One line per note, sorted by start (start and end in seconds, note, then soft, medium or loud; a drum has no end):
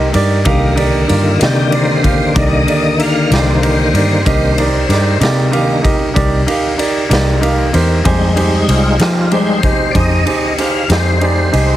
0.00 0.11 C2 medium
0.13 0.44 G2 medium
0.13 0.38 D#4 medium
0.13 0.38 G4 medium
0.13 0.38 A#4 medium
0.13 0.39 D5 medium
0.13 ride medium
0.45 1.05 C2 medium
0.45 4.23 D3 medium
0.45 4.22 D#3 soft
0.45 4.22 A#3 soft
0.45 0.69 D#4 medium
0.45 0.69 G4 medium
0.45 0.70 A#4 medium
0.45 0.70 F5 medium
0.45 kick loud
0.45 ride medium
0.76 1.01 D#4 medium
0.76 1.01 G4 medium
0.76 1.01 A#4 medium
0.76 1.01 D5 medium
0.76 ride medium
1.07 1.39 G2 medium
1.07 1.32 D#4 medium
1.07 1.40 F4 medium
1.07 1.33 G4 soft
1.07 1.33 A#4 soft
1.07 1.33 D5 medium
1.07 ride soft
1.39 2.32 C3 medium
1.39 1.64 D#4 medium
1.39 1.64 G4 soft
1.39 1.65 A#4 soft
1.39 1.65 D5 medium
1.39 snare loud
1.39 ride medium
1.43 1.73 G4 medium
1.71 1.95 D#4 soft
1.71 1.96 G4 soft
1.71 1.96 A#4 medium
1.71 1.96 D5 medium
1.71 ride medium
1.75 2.35 C5 medium
2.03 2.27 D#4 medium
2.03 2.28 G4 soft
2.03 2.28 A#4 soft
2.03 2.28 F5 medium
2.03 kick medium
2.03 ride medium
2.33 2.65 C2 loud
2.33 2.60 D#4 medium
2.33 2.60 G4 soft
2.33 2.60 A#4 medium
2.33 2.37 D5 medium
2.33 2.60 D5 medium
2.33 kick loud
2.33 ride medium
2.39 2.99 D#5 medium
2.67 2.91 D#4 soft
2.67 2.91 G4 soft
2.67 2.92 A#4 soft
2.67 2.92 D5 medium
2.67 ride medium
2.99 3.23 D#4 soft
2.99 3.23 G4 soft
2.99 3.24 A#4 soft
2.99 3.24 D5 medium
2.99 3.02 E5 medium
2.99 ride medium
3.03 3.32 F5 medium
3.30 3.90 C2 medium
3.30 3.55 D#4 medium
3.30 3.55 G4 soft
3.30 3.55 A#4 medium
3.30 3.55 D5 medium
3.30 snare loud
3.30 ride medium
3.35 5.19 C5 medium
3.62 3.86 D#4 medium
3.62 3.87 G4 soft
3.62 3.87 A#4 medium
3.62 3.87 C5 medium
3.62 ride medium
3.94 4.23 G2 medium
3.94 4.18 D#4 medium
3.94 4.18 G4 medium
3.94 4.18 A#4 soft
3.94 4.19 D5 medium
3.94 ride medium
4.25 4.85 C2 medium
4.25 4.69 D#3 medium
4.25 4.69 A#3 medium
4.25 4.70 D4 medium
4.25 4.49 D#4 medium
4.25 4.50 G4 medium
4.25 4.50 A#4 medium
4.25 4.50 D#5 medium
4.25 kick loud
4.25 ride medium
4.58 4.82 D#4 medium
4.58 4.82 G4 soft
4.58 4.82 A#4 soft
4.58 4.82 D5 medium
4.58 ride medium
4.89 5.18 G2 medium
4.89 5.13 D#4 medium
4.89 5.13 G4 medium
4.89 5.14 A#4 medium
4.89 5.14 D5 medium
4.89 snare soft
4.89 ride medium
5.20 6.12 C3 medium
5.20 5.44 D#4 medium
5.20 5.45 G4 medium
5.20 5.45 A#4 medium
5.20 5.45 D5 medium
5.20 snare loud
5.20 ride medium
5.51 5.82 D#3 soft
5.51 5.82 A#3 soft
5.51 5.82 D4 soft
5.51 5.76 D#4 medium
5.51 5.76 G4 medium
5.51 5.76 A#4 medium
5.51 5.77 F5 medium
5.51 ride medium
5.82 6.07 D#4 medium
5.82 6.07 G4 medium
5.82 6.07 A#4 medium
5.82 6.08 D#5 medium
5.82 kick medium
5.82 ride medium
6.14 6.45 C2 medium
6.14 6.39 D#4 medium
6.14 6.39 G4 medium
6.14 6.39 A#4 medium
6.14 6.39 D5 medium
6.14 kick loud
6.14 ride medium
6.46 6.71 D#4 medium
6.46 6.71 G4 medium
6.46 6.71 A#4 medium
6.46 6.71 F5 medium
6.46 ride medium
6.78 7.02 D#4 medium
6.78 7.02 G4 medium
6.78 7.03 A#4 soft
6.78 7.03 D5 medium
6.78 ride medium
7.09 7.70 C2 medium
7.09 7.34 D#4 medium
7.09 7.34 G4 medium
7.09 7.34 A#4 medium
7.09 7.34 D5 medium
7.09 snare loud
7.09 ride medium
7.41 7.65 D#4 medium
7.41 7.66 G4 medium
7.41 7.66 A#4 medium
7.41 7.66 F5 medium
7.41 ride medium
7.73 8.03 E2 medium
7.73 7.97 D#4 medium
7.73 7.97 G4 medium
7.73 7.98 A#4 medium
7.73 7.98 C5 medium
7.73 ride medium
8.04 8.65 F2 medium
8.04 8.97 G3 soft
8.04 8.97 G#3 soft
8.04 8.29 D#4 medium
8.04 8.98 D#4 medium
8.04 8.29 G4 medium
8.04 8.29 G#4 medium
8.04 8.29 C5 medium
8.04 kick loud
8.04 ride medium
8.36 8.60 D#4 medium
8.36 8.61 G4 medium
8.36 8.61 G#4 medium
8.36 8.61 C5 medium
8.36 ride medium
8.68 8.97 C2 medium
8.68 8.92 D#4 soft
8.68 9.00 F4 medium
8.68 8.92 G4 soft
8.68 8.93 G#4 soft
8.68 8.93 C5 medium
8.68 ride medium
8.99 9.91 F3 medium
8.99 9.24 D#4 soft
8.99 9.31 F4 medium
8.99 9.24 G4 soft
8.99 9.24 G#4 soft
8.99 9.24 C5 medium
8.99 snare loud
8.99 ride medium
9.31 9.60 G3 soft
9.31 9.60 G#3 soft
9.31 9.55 D#4 medium
9.31 9.61 D#4 soft
9.31 9.55 G4 soft
9.31 9.56 G#4 soft
9.31 9.56 C5 medium
9.31 9.94 C5 medium
9.31 ride medium
9.63 9.87 D#4 soft
9.63 9.87 G4 soft
9.63 9.88 G#4 soft
9.63 9.88 D#5 medium
9.63 kick medium
9.63 ride medium
9.91 10.24 F2 medium
9.91 10.18 D#4 medium
9.91 10.19 G4 soft
9.91 9.95 D5 medium
9.91 kick loud
9.91 ride medium
9.96 10.19 G#4 soft
9.96 10.19 C5 medium
9.96 10.57 D#5 medium
10.26 10.50 D#4 soft
10.26 10.50 G4 soft
10.26 10.50 G#4 soft
10.26 10.51 C5 medium
10.26 ride medium
10.56 10.82 D#4 soft
10.56 10.82 G4 soft
10.56 10.82 G#4 soft
10.56 10.83 C5 medium
10.56 10.60 E5 medium
10.56 10.90 F5 medium
10.56 ride medium
10.89 11.49 F2 medium
10.89 11.13 D#4 soft
10.89 11.13 G4 soft
10.89 11.14 G#4 soft
10.89 11.14 C5 medium
10.89 snare loud
10.89 ride medium
10.94 11.77 C5 medium
11.21 11.45 D#4 medium
11.21 11.45 G4 soft
11.21 11.46 G#4 soft
11.21 11.46 D5 medium
11.21 ride medium
11.52 11.77 C2 medium
11.52 11.76 D#4 medium
11.52 11.77 G4 soft
11.52 11.77 G#4 soft
11.52 11.77 D#5 medium
11.52 ride soft